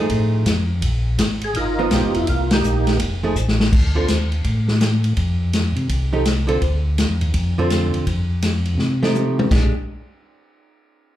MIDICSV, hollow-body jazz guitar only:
0, 0, Header, 1, 2, 480
1, 0, Start_track
1, 0, Tempo, 361882
1, 1097, Time_signature, 4, 2, 24, 8
1, 14808, End_track
2, 0, Start_track
2, 0, Title_t, "Hollow-body jazz guitar"
2, 0, Program_c, 0, 26
2, 0, Note_on_c, 0, 53, 51
2, 0, Note_on_c, 0, 57, 62
2, 0, Note_on_c, 0, 63, 61
2, 0, Note_on_c, 0, 68, 58
2, 583, Note_off_c, 0, 53, 0
2, 587, Note_off_c, 0, 57, 0
2, 587, Note_off_c, 0, 63, 0
2, 593, Note_off_c, 0, 68, 0
2, 2371, Note_on_c, 0, 53, 69
2, 2375, Note_on_c, 0, 59, 69
2, 2378, Note_on_c, 0, 63, 72
2, 2986, Note_off_c, 0, 53, 0
2, 2988, Note_off_c, 0, 59, 0
2, 2989, Note_off_c, 0, 63, 0
2, 4290, Note_on_c, 0, 53, 61
2, 4296, Note_on_c, 0, 57, 61
2, 4303, Note_on_c, 0, 63, 56
2, 4304, Note_on_c, 0, 68, 67
2, 4442, Note_off_c, 0, 53, 0
2, 4445, Note_off_c, 0, 57, 0
2, 4449, Note_off_c, 0, 63, 0
2, 4449, Note_off_c, 0, 68, 0
2, 5245, Note_on_c, 0, 50, 58
2, 5250, Note_on_c, 0, 60, 53
2, 5253, Note_on_c, 0, 65, 60
2, 5258, Note_on_c, 0, 69, 61
2, 5399, Note_off_c, 0, 50, 0
2, 5402, Note_off_c, 0, 60, 0
2, 5403, Note_off_c, 0, 65, 0
2, 5406, Note_off_c, 0, 69, 0
2, 8126, Note_on_c, 0, 53, 55
2, 8131, Note_on_c, 0, 63, 64
2, 8136, Note_on_c, 0, 67, 59
2, 8147, Note_on_c, 0, 69, 57
2, 8279, Note_off_c, 0, 53, 0
2, 8282, Note_off_c, 0, 63, 0
2, 8284, Note_off_c, 0, 67, 0
2, 8289, Note_off_c, 0, 69, 0
2, 8582, Note_on_c, 0, 50, 63
2, 8595, Note_on_c, 0, 60, 61
2, 8599, Note_on_c, 0, 65, 58
2, 8604, Note_on_c, 0, 69, 67
2, 8747, Note_off_c, 0, 50, 0
2, 8753, Note_off_c, 0, 60, 0
2, 8755, Note_off_c, 0, 65, 0
2, 8758, Note_off_c, 0, 69, 0
2, 10058, Note_on_c, 0, 50, 66
2, 10066, Note_on_c, 0, 65, 71
2, 10067, Note_on_c, 0, 60, 67
2, 10074, Note_on_c, 0, 69, 68
2, 10667, Note_off_c, 0, 50, 0
2, 10671, Note_off_c, 0, 60, 0
2, 10671, Note_off_c, 0, 65, 0
2, 10675, Note_off_c, 0, 69, 0
2, 11972, Note_on_c, 0, 53, 60
2, 11974, Note_on_c, 0, 57, 68
2, 11982, Note_on_c, 0, 67, 70
2, 11984, Note_on_c, 0, 63, 62
2, 12584, Note_off_c, 0, 53, 0
2, 12585, Note_off_c, 0, 57, 0
2, 12589, Note_off_c, 0, 67, 0
2, 12590, Note_off_c, 0, 63, 0
2, 12618, Note_on_c, 0, 56, 55
2, 12624, Note_on_c, 0, 62, 55
2, 12626, Note_on_c, 0, 67, 61
2, 12891, Note_off_c, 0, 56, 0
2, 12894, Note_off_c, 0, 62, 0
2, 12895, Note_off_c, 0, 67, 0
2, 14808, End_track
0, 0, End_of_file